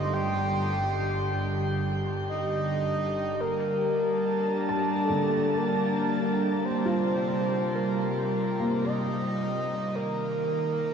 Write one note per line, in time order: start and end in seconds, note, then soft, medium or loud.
0.00 3.33 G1 medium
0.00 3.39 D3 medium
0.00 3.50 D3 medium
0.00 3.50 G3 medium
0.00 3.00 A3 medium
0.00 4.70 G4 medium
0.00 0.15 D#5 loud
0.00 4.52 C6 medium
0.13 1.76 G5 loud
2.29 3.42 D#5 loud
3.39 9.93 G3 medium
3.39 4.96 A#4 loud
3.81 7.72 A5 medium
4.25 6.66 D4 medium
4.69 7.09 A5 medium
4.87 7.97 A#3 medium
4.96 5.06 A#4 medium
5.04 5.58 A4 medium
5.10 9.74 D3 medium
5.57 6.65 A#4 loud
6.65 9.94 C3 medium
6.65 7.77 C5 loud
6.86 10.94 F4 medium
7.75 8.86 A#4 medium
8.60 10.94 A#3 medium
8.85 9.97 D#5 loud
9.93 10.94 D#3 medium
9.93 10.94 A#4 loud
10.81 10.94 F4 medium